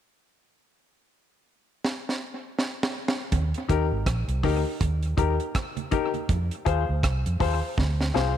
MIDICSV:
0, 0, Header, 1, 4, 480
1, 0, Start_track
1, 0, Key_signature, -3, "major"
1, 0, Tempo, 741931
1, 227, Time_signature, 4, 2, 24, 8
1, 5418, End_track
2, 0, Start_track
2, 0, Title_t, "Upright piano"
2, 0, Program_c, 0, 0
2, 2384, Note_on_c, 0, 63, 86
2, 2388, Note_on_c, 0, 67, 78
2, 2393, Note_on_c, 0, 70, 100
2, 2490, Note_off_c, 0, 63, 0
2, 2492, Note_off_c, 0, 67, 0
2, 2495, Note_off_c, 0, 70, 0
2, 2867, Note_on_c, 0, 63, 88
2, 2871, Note_on_c, 0, 67, 78
2, 2874, Note_on_c, 0, 70, 91
2, 2972, Note_off_c, 0, 63, 0
2, 2974, Note_off_c, 0, 67, 0
2, 2975, Note_off_c, 0, 70, 0
2, 3345, Note_on_c, 0, 63, 80
2, 3350, Note_on_c, 0, 67, 79
2, 3353, Note_on_c, 0, 70, 95
2, 3451, Note_off_c, 0, 63, 0
2, 3453, Note_off_c, 0, 67, 0
2, 3455, Note_off_c, 0, 70, 0
2, 3825, Note_on_c, 0, 63, 93
2, 3828, Note_on_c, 0, 67, 85
2, 3832, Note_on_c, 0, 70, 99
2, 3931, Note_off_c, 0, 63, 0
2, 3932, Note_off_c, 0, 67, 0
2, 3934, Note_off_c, 0, 70, 0
2, 4303, Note_on_c, 0, 65, 95
2, 4305, Note_on_c, 0, 68, 83
2, 4311, Note_on_c, 0, 72, 93
2, 4410, Note_off_c, 0, 65, 0
2, 4411, Note_off_c, 0, 68, 0
2, 4414, Note_off_c, 0, 72, 0
2, 4785, Note_on_c, 0, 65, 81
2, 4788, Note_on_c, 0, 68, 73
2, 4792, Note_on_c, 0, 72, 98
2, 4891, Note_off_c, 0, 65, 0
2, 4893, Note_off_c, 0, 68, 0
2, 4895, Note_off_c, 0, 72, 0
2, 5265, Note_on_c, 0, 65, 84
2, 5270, Note_on_c, 0, 68, 80
2, 5273, Note_on_c, 0, 72, 93
2, 5371, Note_off_c, 0, 65, 0
2, 5374, Note_off_c, 0, 68, 0
2, 5375, Note_off_c, 0, 72, 0
2, 5418, End_track
3, 0, Start_track
3, 0, Title_t, "Fingered electric bass"
3, 0, Program_c, 1, 33
3, 2152, Note_on_c, 1, 39, 99
3, 2275, Note_off_c, 1, 39, 0
3, 2391, Note_on_c, 1, 39, 91
3, 2514, Note_off_c, 1, 39, 0
3, 2532, Note_on_c, 1, 32, 80
3, 2616, Note_off_c, 1, 32, 0
3, 2628, Note_on_c, 1, 34, 86
3, 2753, Note_off_c, 1, 34, 0
3, 2767, Note_on_c, 1, 36, 90
3, 2853, Note_off_c, 1, 36, 0
3, 2870, Note_on_c, 1, 38, 83
3, 2994, Note_off_c, 1, 38, 0
3, 3110, Note_on_c, 1, 39, 89
3, 3319, Note_off_c, 1, 39, 0
3, 3350, Note_on_c, 1, 39, 90
3, 3474, Note_off_c, 1, 39, 0
3, 4072, Note_on_c, 1, 41, 92
3, 4195, Note_off_c, 1, 41, 0
3, 4312, Note_on_c, 1, 39, 84
3, 4435, Note_off_c, 1, 39, 0
3, 4457, Note_on_c, 1, 38, 84
3, 4539, Note_off_c, 1, 38, 0
3, 4553, Note_on_c, 1, 36, 84
3, 4676, Note_off_c, 1, 36, 0
3, 4698, Note_on_c, 1, 41, 79
3, 4780, Note_off_c, 1, 41, 0
3, 4792, Note_on_c, 1, 39, 77
3, 4915, Note_off_c, 1, 39, 0
3, 5034, Note_on_c, 1, 38, 83
3, 5241, Note_off_c, 1, 38, 0
3, 5275, Note_on_c, 1, 36, 94
3, 5397, Note_off_c, 1, 36, 0
3, 5418, End_track
4, 0, Start_track
4, 0, Title_t, "Drums"
4, 1194, Note_on_c, 9, 38, 52
4, 1259, Note_off_c, 9, 38, 0
4, 1353, Note_on_c, 9, 38, 50
4, 1417, Note_off_c, 9, 38, 0
4, 1673, Note_on_c, 9, 38, 67
4, 1738, Note_off_c, 9, 38, 0
4, 1832, Note_on_c, 9, 38, 94
4, 1897, Note_off_c, 9, 38, 0
4, 1995, Note_on_c, 9, 38, 81
4, 2060, Note_off_c, 9, 38, 0
4, 2148, Note_on_c, 9, 42, 84
4, 2149, Note_on_c, 9, 36, 106
4, 2152, Note_on_c, 9, 64, 82
4, 2213, Note_off_c, 9, 42, 0
4, 2214, Note_off_c, 9, 36, 0
4, 2217, Note_off_c, 9, 64, 0
4, 2292, Note_on_c, 9, 42, 52
4, 2357, Note_off_c, 9, 42, 0
4, 2390, Note_on_c, 9, 36, 86
4, 2391, Note_on_c, 9, 42, 69
4, 2455, Note_off_c, 9, 36, 0
4, 2456, Note_off_c, 9, 42, 0
4, 2629, Note_on_c, 9, 36, 102
4, 2630, Note_on_c, 9, 42, 102
4, 2632, Note_on_c, 9, 37, 95
4, 2694, Note_off_c, 9, 36, 0
4, 2694, Note_off_c, 9, 42, 0
4, 2697, Note_off_c, 9, 37, 0
4, 2773, Note_on_c, 9, 42, 55
4, 2838, Note_off_c, 9, 42, 0
4, 2869, Note_on_c, 9, 36, 87
4, 2872, Note_on_c, 9, 46, 73
4, 2873, Note_on_c, 9, 63, 49
4, 2873, Note_on_c, 9, 64, 66
4, 2934, Note_off_c, 9, 36, 0
4, 2937, Note_off_c, 9, 46, 0
4, 2938, Note_off_c, 9, 63, 0
4, 2938, Note_off_c, 9, 64, 0
4, 3109, Note_on_c, 9, 64, 70
4, 3110, Note_on_c, 9, 42, 81
4, 3111, Note_on_c, 9, 36, 105
4, 3174, Note_off_c, 9, 64, 0
4, 3175, Note_off_c, 9, 36, 0
4, 3175, Note_off_c, 9, 42, 0
4, 3251, Note_on_c, 9, 42, 45
4, 3316, Note_off_c, 9, 42, 0
4, 3347, Note_on_c, 9, 64, 71
4, 3349, Note_on_c, 9, 36, 87
4, 3351, Note_on_c, 9, 42, 68
4, 3412, Note_off_c, 9, 64, 0
4, 3413, Note_off_c, 9, 36, 0
4, 3416, Note_off_c, 9, 42, 0
4, 3493, Note_on_c, 9, 42, 38
4, 3558, Note_off_c, 9, 42, 0
4, 3590, Note_on_c, 9, 36, 104
4, 3590, Note_on_c, 9, 42, 82
4, 3593, Note_on_c, 9, 63, 48
4, 3596, Note_on_c, 9, 37, 99
4, 3654, Note_off_c, 9, 42, 0
4, 3655, Note_off_c, 9, 36, 0
4, 3657, Note_off_c, 9, 63, 0
4, 3661, Note_off_c, 9, 37, 0
4, 3731, Note_on_c, 9, 63, 70
4, 3733, Note_on_c, 9, 42, 49
4, 3795, Note_off_c, 9, 63, 0
4, 3798, Note_off_c, 9, 42, 0
4, 3827, Note_on_c, 9, 42, 72
4, 3830, Note_on_c, 9, 36, 81
4, 3834, Note_on_c, 9, 63, 70
4, 3892, Note_off_c, 9, 42, 0
4, 3895, Note_off_c, 9, 36, 0
4, 3899, Note_off_c, 9, 63, 0
4, 3971, Note_on_c, 9, 63, 54
4, 3974, Note_on_c, 9, 42, 33
4, 4036, Note_off_c, 9, 63, 0
4, 4039, Note_off_c, 9, 42, 0
4, 4070, Note_on_c, 9, 36, 114
4, 4070, Note_on_c, 9, 42, 86
4, 4070, Note_on_c, 9, 64, 80
4, 4134, Note_off_c, 9, 64, 0
4, 4135, Note_off_c, 9, 36, 0
4, 4135, Note_off_c, 9, 42, 0
4, 4214, Note_on_c, 9, 42, 49
4, 4279, Note_off_c, 9, 42, 0
4, 4311, Note_on_c, 9, 36, 85
4, 4311, Note_on_c, 9, 42, 70
4, 4376, Note_off_c, 9, 36, 0
4, 4376, Note_off_c, 9, 42, 0
4, 4550, Note_on_c, 9, 36, 96
4, 4552, Note_on_c, 9, 42, 93
4, 4554, Note_on_c, 9, 37, 99
4, 4615, Note_off_c, 9, 36, 0
4, 4617, Note_off_c, 9, 42, 0
4, 4619, Note_off_c, 9, 37, 0
4, 4697, Note_on_c, 9, 42, 54
4, 4761, Note_off_c, 9, 42, 0
4, 4789, Note_on_c, 9, 63, 44
4, 4789, Note_on_c, 9, 64, 70
4, 4790, Note_on_c, 9, 36, 89
4, 4792, Note_on_c, 9, 46, 75
4, 4854, Note_off_c, 9, 36, 0
4, 4854, Note_off_c, 9, 63, 0
4, 4854, Note_off_c, 9, 64, 0
4, 4857, Note_off_c, 9, 46, 0
4, 5030, Note_on_c, 9, 64, 71
4, 5031, Note_on_c, 9, 36, 104
4, 5039, Note_on_c, 9, 38, 50
4, 5095, Note_off_c, 9, 64, 0
4, 5096, Note_off_c, 9, 36, 0
4, 5104, Note_off_c, 9, 38, 0
4, 5179, Note_on_c, 9, 38, 49
4, 5244, Note_off_c, 9, 38, 0
4, 5269, Note_on_c, 9, 64, 66
4, 5278, Note_on_c, 9, 38, 69
4, 5333, Note_off_c, 9, 64, 0
4, 5343, Note_off_c, 9, 38, 0
4, 5418, End_track
0, 0, End_of_file